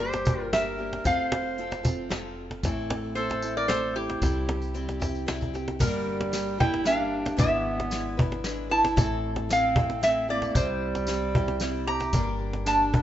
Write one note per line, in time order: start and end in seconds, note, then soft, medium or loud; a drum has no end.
0.00 1.02 G1 medium
0.00 0.26 G3 medium
0.00 0.26 A#3 medium
0.00 0.25 D4 medium
0.00 0.50 G4 medium
0.00 0.24 G4 medium
0.00 0.43 C5 medium
0.00 cajon slap soft
0.00 closed hi-hat soft
0.13 cajon slap medium
0.13 tambourine soft
0.25 0.52 G3 soft
0.25 0.52 A#3 soft
0.25 0.53 D4 soft
0.25 0.53 G4 soft
0.25 cajon bass loud
0.25 tambourine medium
0.43 0.54 A#4 medium
0.53 0.79 G3 soft
0.53 0.78 A#3 soft
0.53 0.77 D4 medium
0.53 0.77 G4 medium
0.53 1.02 A#4 medium
0.53 1.02 E5 medium
0.53 snare medium
0.53 cajon slap medium
0.53 closed hi-hat soft
0.78 1.04 G3 soft
0.78 1.04 A#3 soft
0.78 1.05 D4 soft
0.78 1.05 G4 soft
0.93 cajon slap medium
1.04 2.61 F1 medium
1.04 1.57 F3 medium
1.04 1.58 C4 medium
1.04 1.58 F4 medium
1.04 1.60 A4 medium
1.04 2.08 C5 medium
1.04 2.08 F5 medium
1.04 kick medium
1.04 cajon bass medium
1.04 cajon slap soft
1.04 closed hi-hat soft
1.04 tambourine medium
1.32 cajon slap medium
1.58 1.85 F3 medium
1.58 1.84 C4 medium
1.58 1.83 F4 medium
1.58 1.82 A4 medium
1.58 cajon slap soft
1.58 closed hi-hat soft
1.71 cajon slap medium
1.71 tambourine soft
1.83 2.09 C4 soft
1.83 2.09 F4 soft
1.83 2.11 A4 soft
1.83 cajon bass medium
1.83 tambourine medium
2.09 2.63 F3 medium
2.09 2.65 C4 medium
2.09 2.64 F4 medium
2.09 2.64 A4 medium
2.09 snare medium
2.09 cajon slap medium
2.09 closed hi-hat soft
2.51 cajon slap medium
2.63 4.19 A1 medium
2.63 3.17 A2 medium
2.63 4.21 E3 medium
2.63 3.16 A3 medium
2.63 3.17 C4 medium
2.63 3.18 E4 medium
2.63 3.18 A4 medium
2.63 kick medium
2.63 cajon bass medium
2.63 cajon slap soft
2.63 closed hi-hat soft
2.63 tambourine medium
2.90 cajon slap medium
3.15 3.43 A3 medium
3.15 3.42 C4 medium
3.15 3.42 E4 medium
3.15 3.53 A4 medium
3.15 3.41 A4 medium
3.15 3.57 C5 medium
3.15 cajon slap soft
3.15 closed hi-hat soft
3.30 cajon slap medium
3.30 tambourine soft
3.42 3.67 A3 soft
3.42 3.67 C4 soft
3.42 3.68 E4 soft
3.42 3.69 A4 soft
3.42 tambourine medium
3.57 3.70 A#4 medium
3.57 3.70 D5 medium
3.68 4.22 A3 medium
3.68 4.21 C4 medium
3.68 4.21 E4 medium
3.68 3.96 A4 medium
3.68 4.23 A4 medium
3.68 3.96 C5 loud
3.68 snare medium
3.68 cajon slap medium
3.68 closed hi-hat soft
3.96 5.24 E4 medium
3.96 5.24 G4 medium
4.10 cajon slap medium
4.22 5.77 C2 medium
4.22 4.75 C3 medium
4.22 4.73 G3 medium
4.22 4.73 C4 medium
4.22 4.74 E4 medium
4.22 4.75 G4 medium
4.22 kick medium
4.22 cajon bass medium
4.22 cajon slap soft
4.22 closed hi-hat soft
4.22 tambourine medium
4.49 cajon slap medium
4.62 cajon slap soft
4.62 tambourine soft
4.74 5.01 G3 medium
4.74 5.00 C4 medium
4.74 4.99 E4 medium
4.74 4.98 G4 medium
4.74 cajon slap soft
4.74 closed hi-hat soft
4.74 tambourine soft
4.88 cajon slap medium
4.88 tambourine soft
4.99 5.26 C4 soft
4.99 5.27 E4 soft
4.99 5.27 G4 medium
4.99 cajon bass medium
4.99 cajon slap soft
4.99 tambourine medium
5.15 cajon slap soft
5.15 tambourine soft
5.26 5.54 G3 medium
5.26 5.54 C4 medium
5.26 5.53 E4 medium
5.26 5.52 G4 medium
5.26 snare medium
5.26 cajon slap medium
5.26 closed hi-hat soft
5.41 cajon bass medium
5.41 tambourine soft
5.54 5.80 C4 soft
5.54 5.80 E4 soft
5.54 5.80 G4 soft
5.54 cajon slap medium
5.54 tambourine soft
5.68 cajon slap medium
5.79 7.36 G1 medium
5.79 6.33 G2 medium
5.79 6.33 D3 medium
5.79 6.30 G3 medium
5.79 6.56 G3 medium
5.79 6.32 A#3 medium
5.79 6.33 D4 medium
5.79 6.33 G4 medium
5.79 6.62 A#4 medium
5.79 kick medium
5.79 cajon bass medium
5.79 crash medium
5.79 tambourine loud
6.07 cajon slap soft
6.21 cajon slap medium
6.32 6.59 G3 medium
6.32 6.59 A#3 medium
6.32 6.59 D4 medium
6.32 6.57 G4 medium
6.32 snare medium
6.32 closed hi-hat medium
6.32 tambourine medium
6.48 cajon slap soft
6.58 6.83 G3 soft
6.58 6.83 A#3 soft
6.58 6.84 D4 soft
6.58 6.85 E4 medium
6.58 6.86 G4 medium
6.58 6.87 G5 loud
6.58 cajon bass loud
6.74 cajon slap medium
6.84 7.36 G3 medium
6.84 7.37 A#3 medium
6.84 7.36 D4 medium
6.84 7.38 G4 medium
6.84 7.39 F5 medium
6.84 snare medium
6.84 closed hi-hat soft
6.84 tambourine medium
7.00 cajon slap soft
7.25 cajon slap medium
7.25 tambourine soft
7.37 8.94 G#1 medium
7.37 7.89 G#3 medium
7.37 8.41 B3 medium
7.37 7.89 D4 medium
7.37 7.91 E4 medium
7.37 7.91 B4 medium
7.37 8.41 E5 medium
7.37 kick medium
7.37 cajon bass medium
7.37 closed hi-hat medium
7.37 tambourine medium
7.66 cajon slap soft
7.80 cajon slap medium
7.90 8.17 G#3 medium
7.90 8.18 D4 medium
7.90 8.17 E4 medium
7.90 8.16 B4 medium
7.90 snare medium
7.90 closed hi-hat soft
7.90 tambourine medium
8.06 cajon slap soft
8.17 8.44 D4 soft
8.17 8.45 E4 soft
8.17 8.44 B4 medium
8.17 cajon bass loud
8.32 cajon slap medium
8.44 8.71 G#3 medium
8.44 8.71 D4 medium
8.44 8.69 E4 medium
8.44 8.68 B4 medium
8.44 snare medium
8.44 closed hi-hat soft
8.44 tambourine medium
8.59 cajon slap soft
8.70 8.97 D4 soft
8.70 8.96 E4 soft
8.70 9.20 E4 medium
8.70 8.97 B4 soft
8.70 9.20 A5 loud
8.85 cajon slap medium
8.85 tambourine soft
8.96 10.52 A1 medium
8.96 9.49 A2 medium
8.96 10.54 E3 medium
8.96 9.48 A3 medium
8.96 9.50 C4 medium
8.96 9.50 E4 medium
8.96 9.50 A4 medium
8.96 kick medium
8.96 cajon bass loud
8.96 closed hi-hat soft
8.96 tambourine loud
9.11 cajon slap soft
9.24 cajon slap soft
9.36 cajon slap medium
9.49 9.76 A3 medium
9.49 9.75 C4 medium
9.49 9.75 E4 medium
9.49 9.74 A4 medium
9.49 10.03 F5 medium
9.49 snare medium
9.49 closed hi-hat medium
9.49 tambourine loud
9.54 10.01 C4 medium
9.63 cajon slap soft
9.75 10.00 A3 soft
9.75 10.01 C4 soft
9.75 10.01 E4 soft
9.75 10.02 A4 soft
9.75 cajon bass loud
9.90 cajon slap medium
10.01 10.28 A3 medium
10.01 10.28 C4 medium
10.01 10.28 E4 medium
10.01 10.27 A4 medium
10.01 10.28 E5 medium
10.01 snare medium
10.01 closed hi-hat medium
10.01 tambourine medium
10.06 10.29 C4 medium
10.16 cajon slap soft
10.28 10.55 A3 soft
10.28 10.54 A#3 medium
10.28 10.54 C4 soft
10.28 10.55 E4 soft
10.28 10.55 A4 soft
10.28 10.57 D5 medium
10.42 cajon slap medium
10.42 tambourine soft
10.55 12.10 C2 medium
10.55 11.08 C3 medium
10.55 11.06 G3 medium
10.55 11.83 G3 medium
10.55 11.07 C4 medium
10.55 11.08 E4 medium
10.55 11.09 G4 medium
10.55 11.84 C5 medium
10.55 kick medium
10.55 cajon bass medium
10.55 closed hi-hat medium
10.55 tambourine loud
10.82 cajon slap soft
10.95 cajon slap medium
10.95 tambourine soft
11.07 11.34 G3 medium
11.07 11.34 C4 medium
11.07 11.35 E4 medium
11.07 11.34 G4 medium
11.07 snare medium
11.07 closed hi-hat medium
11.07 tambourine loud
11.22 cajon slap soft
11.35 11.60 C4 soft
11.35 11.61 E4 soft
11.35 11.61 G4 medium
11.35 cajon bass medium
11.48 cajon slap medium
11.60 11.87 G3 medium
11.60 11.87 C4 medium
11.60 11.86 E4 medium
11.60 11.86 G4 medium
11.60 snare medium
11.60 closed hi-hat soft
11.60 tambourine medium
11.75 cajon slap soft
11.87 12.14 C4 soft
11.87 12.13 E4 soft
11.87 12.36 G4 medium
11.87 12.13 G4 soft
11.87 12.36 A#5 medium
12.00 cajon slap medium
12.00 tambourine soft
12.13 13.02 G1 medium
12.13 12.66 G2 medium
12.13 12.66 D3 medium
12.13 12.65 G3 medium
12.13 12.65 A#3 medium
12.13 12.66 D4 medium
12.13 12.67 G4 medium
12.13 kick medium
12.13 cajon bass medium
12.13 closed hi-hat medium
12.13 tambourine loud
12.28 cajon slap soft
12.41 cajon slap soft
12.53 cajon slap medium
12.66 12.92 G3 medium
12.66 12.92 A#3 medium
12.66 13.02 D4 medium
12.66 12.92 D4 medium
12.66 12.91 G4 medium
12.66 13.02 A5 medium
12.66 snare medium
12.66 closed hi-hat soft
12.66 tambourine medium
12.80 cajon slap soft
12.92 13.02 G3 soft
12.92 13.02 A#3 soft
12.92 13.02 D4 soft
12.92 13.02 G4 soft
12.92 cajon bass loud